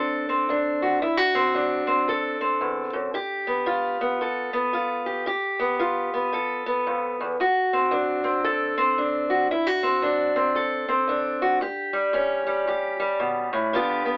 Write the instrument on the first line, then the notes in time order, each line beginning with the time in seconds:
steel-string acoustic guitar
Already playing: D2 C4 D4 A4
0.29 C4
0.49 D2 D4
0.82 F#4
1.02 D2 E4
1.17 F#4
1.35 C4
1.54 D2 D4
1.87 C4
2.08 D2 A4
2.41 C4
2.61 E2
2.93 F#2
3.14 G2 G4
3.47 B3
3.66 G2 F4
4.01 B3
4.21 G2 A4
4.53 B3
4.73 G2 F4
5.06 G4
5.26 G2 G4
5.59 B3
5.79 G2 F4
6.14 B3
6.33 G2 A4
6.66 B3
6.87 F2
7.20 E2
7.40 D2 F#4
7.73 C4
7.91 D2 D4
8.24 C4
8.44 D2 A4
8.78 C4
8.98 D2 D4
9.30 F#4
9.51 D2 E4
9.67 F#4
9.83 C4
10.02 D2 D4
10.36 C4
10.55 D2 A4
10.89 C4
11.08 D2 D4
11.42 F#4
11.61 A2 G4
11.93 G3
12.13 A2 C#4
12.47 G3
12.67 A2 G4
13.00 G3
13.20 B2
13.53 A2
13.73 G2 D3 B3 F4 G4
14.06 B3